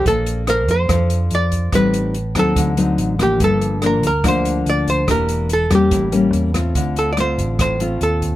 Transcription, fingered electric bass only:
X:1
M:4/4
L:1/8
Q:1/4=143
K:Bb
V:1 name="Fingered electric bass" clef=bass
B,,,3 F,, F,,2 F,,2 | A,,,3 E,, D,,2 A,,,2 | G,,,3 D,, D,,2 D,,2 | =E,,,3 =E,, A,,,2 E,,2 |
D,,3 A,,, A,,,2 E,,2 |]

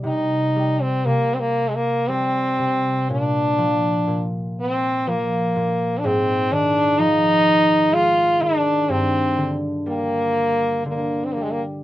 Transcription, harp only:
X:1
M:3/4
L:1/8
Q:1/4=61
K:Cm
V:1 name="Harp" clef=bass
C, G, C,2 G, C, | B,, F, B,,2 F, B,, | A,, E, F,2 A, E, | G,, D, G,2 D, G, |]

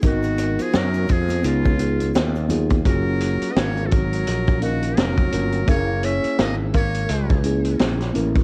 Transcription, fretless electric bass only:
X:1
M:4/4
L:1/16
Q:"Swing 16ths" 1/4=85
K:F#
V:1 name="Fretless electric bass" clef=bass
G,,,3 z F,,2 E,,2 C,,4 D,,4 | F,,,3 z G,,,4 A,,,4 E,,,2 =G,,,2 | F,,,3 z G,,,4 C,,4 A,,,2 =A,,,2 |]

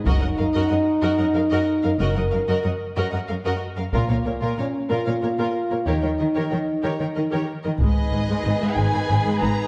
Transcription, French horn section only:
X:1
M:6/8
L:1/8
Q:3/8=62
K:Ebm
V:1 name="French horn section"
E6 | B3 z3 | B,2 D F3 | E4- E z |
[K:G#m] [G,B,]6 |]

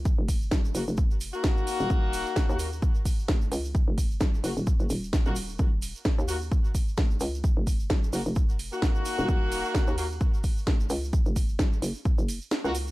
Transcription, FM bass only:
X:1
M:4/4
L:1/16
Q:"Swing 16ths" 1/4=130
K:Ebm
V:1 name="FM bass" clef=bass
D,, F,,,3 E,,,2 G,,, F,,,4 z4 E,,, | E,,,3 z2 E,,3 z4 F,,,2 D,,2- | D,, F,,,3 E,,,2 G,,, E,,,2 G,,, E,,,3 E,,,3 | E,,,3 z2 E,,3 z4 F,,,2 D,,2- |
D,, F,,,3 E,,,2 G,,, F,,,4 z4 E,,, | E,,,3 z2 E,,3 z4 F,,,2 D,,2- | D,, F,,,3 E,,,2 G,,, z2 G,,,2 z2 D,,3 |]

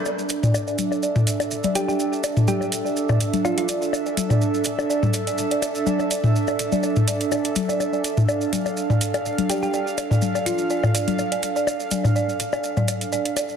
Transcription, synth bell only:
X:1
M:4/4
L:1/16
Q:"Swing 16ths" 1/4=124
K:Dm
V:1 name="Synth bell"
d z2 d z d z2 d z d z2 d z d | z2 d z d z2 d z d z2 d z d z | z d z d z2 d z d z2 d z d z2 | d z d z2 d z d z2 d z d z2 d |
z d z2 d z d z2 d z d z2 d z | d z2 d z d z2 d z d z2 d z d | z2 d z d z2 d z d z2 d z d z |]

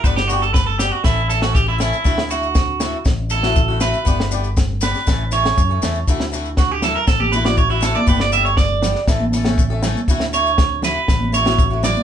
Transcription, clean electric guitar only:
X:1
M:4/4
L:1/16
Q:1/4=120
K:D
V:1 name="Clean electric guitar"
B G F A B A G F E2 A F G E E2- | E2 F6 z2 A4 B2- | B4 z2 B4 c6 | z4 F G A _B A G =B d c E A d |
B d e c d4 z8 | z2 c4 B4 c4 d2 |]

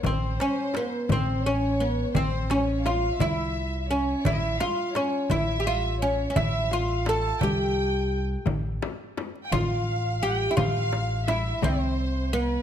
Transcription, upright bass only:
X:1
M:6/8
L:1/8
Q:3/8=57
K:none
V:1 name="Upright bass" clef=bass
A,,, z2 A,,,3 | A,,,3 C,,3 | A,,, z2 A,,,3 | A,,,3 C,,3 |
A,,, z2 A,,,3 | A,,,3 C,,3 |]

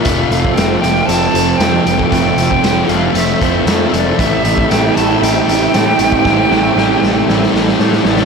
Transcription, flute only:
X:1
M:4/4
L:1/8
Q:1/4=116
K:Flyd
V:1 name="Flute"
e f g g a2 g2 | g3 f e2 z d | e2 g a g4- | g6 z d |]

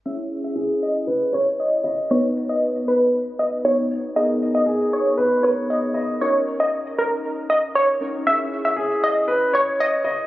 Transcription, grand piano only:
X:1
M:4/4
L:1/8
Q:1/4=117
K:C#dor
V:1 name="Grand piano"
z2 G2 B c2 d- | d z6 z | z2 G2 B c2 d- | d z6 z |
z2 G2 B c2 d |]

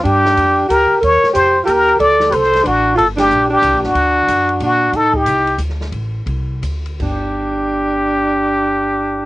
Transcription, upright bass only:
X:1
M:3/4
L:1/8
Q:"Swing" 1/4=184
K:Gm
V:1 name="Upright bass" clef=bass
G,,2 F,,2 D,, z | E,, z F,,2 E,,2 | D,,2 C,,2 A,,,2 | G,,,2 B,,,2 (3C,, B,,, G,,, |
D,,2 ^F,,2 B,,2 | A,,2 C,,2 D,,2 | A,,,2 C,,2 D,,2 | G,,,6- |
G,,,6 |]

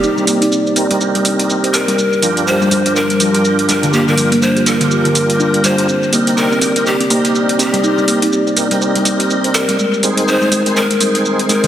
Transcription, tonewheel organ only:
X:1
M:4/4
L:1/16
Q:"Swing 16ths" 1/4=123
K:Cm
V:1 name="Tonewheel organ"
[CEGB]2 [CEGB] z3 [CEGB] [CEGB]8- [CEGB] | z2 [DFGB]4 [DFGB] [DFGB]2 z [DFGB]6- | [DFGB]2 [DFGB] z3 [DFGB] [DFGB]8- [DFGB] | z2 [CEGB]4 [CEGB] [CEGB]2 z [CEGB]6- |
[CEGB]2 [CEGB] z3 [CEGB] [CEGB]8- [CEGB] | z2 [CEAc]4 [CEAc] [CEAc]2 z [CEAc]6 |]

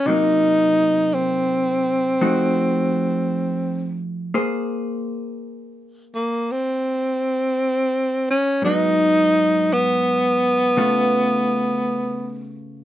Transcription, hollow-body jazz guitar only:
X:1
M:4/4
L:1/8
Q:"Swing" 1/4=56
K:Bbm
V:1 name="Hollow-body jazz guitar"
[C,G,B,E]4 [F,=A,EG]4 | [B,Ac]8 | [A,,G,_CE]4 [D,=A,CF]4 |]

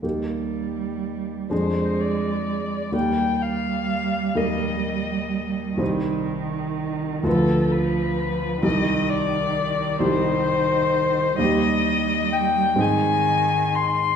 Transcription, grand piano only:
X:1
M:6/8
L:1/8
Q:3/8=42
K:Cm
V:1 name="Grand piano"
[E,,B,EG]3 [F,,A,DA]3 | [E,,G,B,B]3 [E,,G,B,B]3 | [C,,G,Ec]3 [D,,F,F=B]3 | [C,,G,EG]3 [C,,G,EG]3 |
[K:Eb] [E,,G,EG]3 [A,,CEA]3 |]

